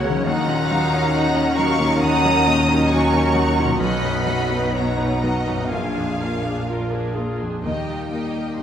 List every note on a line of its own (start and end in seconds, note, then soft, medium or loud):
0.00 0.22 C#2 medium
0.00 0.23 C#2 medium
0.00 0.05 C#3 medium
0.00 0.21 C#3 medium
0.00 0.23 C#3 medium
0.00 0.12 F#3 soft
0.00 0.23 F#3 medium
0.00 0.29 F#3 medium
0.00 0.17 C#4 soft
0.00 0.23 C#4 medium
0.00 0.29 C#4 medium
0.00 0.28 F#4 medium
0.00 0.62 F#4 soft
0.00 0.24 C#5 medium
0.00 0.27 C#5 medium
0.00 0.26 F#5 loud
0.05 0.26 C#3 medium
0.05 0.27 C#4 medium
0.05 0.27 A#4 medium
0.09 3.76 D#3 medium
0.13 3.67 F#3 medium
0.18 3.81 C#4 medium
0.22 5.68 F#3 medium
0.22 3.76 D#4 medium
0.22 1.57 F#5 loud
0.22 1.54 A#5 loud
0.26 3.77 D#2 medium
0.26 1.99 D#2 medium
0.26 3.77 D#3 medium
0.26 3.63 C#4 medium
0.26 0.47 D#4 medium
0.26 0.47 F#4 medium
0.26 0.70 F#5 medium
0.48 0.83 A#2 medium
0.48 0.70 C#4 medium
0.48 0.69 D#4 medium
0.70 1.06 F#3 medium
0.70 0.92 D#4 medium
0.70 0.92 F#4 medium
0.70 1.14 F5 medium
0.93 1.14 C#4 medium
0.93 1.28 C#4 medium
0.93 1.13 D#4 medium
1.14 1.49 D#4 medium
1.14 1.34 D#4 medium
1.14 1.34 F#4 medium
1.14 1.58 F#5 medium
1.35 1.57 C#4 medium
1.35 1.71 C#4 medium
1.35 1.55 D#4 medium
1.56 1.94 F#3 medium
1.56 1.78 D#4 medium
1.56 1.79 F#4 medium
1.56 2.01 F5 medium
1.56 2.00 A#5 medium
1.56 2.02 C#6 loud
1.79 2.15 A#2 medium
1.79 2.02 C#4 medium
1.79 2.00 D#4 medium
2.00 3.77 D#2 medium
2.00 2.22 D#4 medium
2.00 2.23 F#4 medium
2.00 2.46 F#5 medium
2.00 2.89 A#5 loud
2.00 2.91 D#6 loud
2.23 2.61 F#3 medium
2.23 2.47 C#4 medium
2.23 2.45 D#4 medium
2.44 2.83 A#2 medium
2.44 2.68 D#4 medium
2.44 2.69 F#4 medium
2.44 2.90 D#5 medium
2.69 3.05 C#4 medium
2.69 2.92 C#4 medium
2.69 2.91 D#4 medium
2.90 3.12 D#4 medium
2.90 3.27 D#4 medium
2.90 3.12 F#4 medium
2.90 3.35 G#5 medium
2.90 3.80 A#5 loud
2.90 3.81 C#6 loud
3.14 3.49 C#4 medium
3.14 3.36 C#4 medium
3.14 3.36 D#4 medium
3.33 3.72 F#3 medium
3.33 3.57 D#4 medium
3.33 3.59 F#4 medium
3.33 3.80 F#5 medium
3.58 3.81 A#2 medium
3.58 3.81 C#4 medium
3.58 3.81 D#4 medium
3.64 5.68 B2 medium
3.68 5.70 F#3 medium
3.73 5.72 B3 medium
3.77 5.68 B1 medium
3.77 5.72 B1 medium
3.77 5.75 D#4 medium
3.77 5.68 D#4 medium
3.77 4.23 D#5 medium
3.77 4.72 F#5 medium
3.77 4.72 B5 loud
3.82 5.73 B2 medium
3.82 4.03 B3 medium
3.82 4.03 F#4 medium
4.03 4.41 F#2 medium
4.03 4.28 D#4 medium
4.03 4.28 B4 medium
4.24 4.65 F#3 medium
4.24 4.51 B3 medium
4.24 4.51 F#4 medium
4.24 4.72 D#5 medium
4.49 4.88 B3 soft
4.49 4.75 D#4 medium
4.49 4.75 B4 medium
4.73 4.97 B3 medium
4.73 5.14 D#4 soft
4.73 4.97 F#4 medium
4.73 5.23 C#5 medium
4.73 5.70 F#5 medium
4.73 5.72 A#5 medium
4.98 5.38 B3 soft
4.98 5.23 D#4 soft
4.98 5.23 B4 soft
5.22 5.63 F#3 soft
5.22 5.47 B3 soft
5.22 5.47 F#4 medium
5.22 5.72 D#5 medium
5.46 5.73 F#2 soft
5.46 5.72 D#4 soft
5.46 5.72 B4 soft
5.55 7.60 A#2 soft
5.59 7.88 A#3 soft
5.64 7.65 D4 soft
5.69 7.41 A#1 medium
5.69 7.41 A#2 medium
5.69 7.27 F3 medium
5.69 7.28 D4 medium
5.69 7.67 F4 soft
5.69 5.94 F4 soft
5.69 5.94 A#4 soft
5.69 7.17 F5 medium
5.69 6.66 G#5 medium
5.73 7.62 A#1 medium
5.73 6.70 F5 medium
5.96 6.36 F2 soft
5.96 6.21 D4 soft
5.96 6.21 G#4 soft
6.20 6.60 A#3 soft
6.20 6.45 F4 soft
6.20 6.45 A#4 soft
6.43 6.68 D4 soft
6.43 6.84 D4 soft
6.43 6.69 G#4 soft
6.67 6.90 F4 soft
6.67 7.08 F4 soft
6.67 6.90 A#4 soft
6.67 7.16 A#4 medium
6.91 7.17 D4 soft
6.91 7.32 D4 soft
6.91 7.17 G#4 soft
7.14 7.56 A#3 soft
7.14 7.41 F4 soft
7.14 7.64 G#4 medium
7.14 7.41 A#4 soft
7.39 7.65 F2 soft
7.39 7.64 D4 soft
7.39 7.64 G#4 soft
7.63 8.47 D#2 medium
7.63 8.63 D#2 soft
7.63 8.63 D#3 medium
7.63 8.63 G3 medium
7.63 8.11 A#3 soft
7.63 8.11 D#4 soft
7.63 8.63 D#4 medium
7.63 8.10 G4 soft
7.63 8.10 D#5 medium
7.63 8.56 G5 medium
7.90 8.63 A#3 soft
8.11 8.58 A#3 soft
8.11 8.63 A#3 soft
8.11 8.59 D#4 soft
8.11 8.58 G4 soft
8.11 8.63 G4 soft
8.11 8.58 D#5 soft
8.38 8.63 A#4 soft
8.59 8.63 A#3 medium
8.59 8.63 G4 soft
8.59 8.63 D#5 soft
8.59 8.63 C6 medium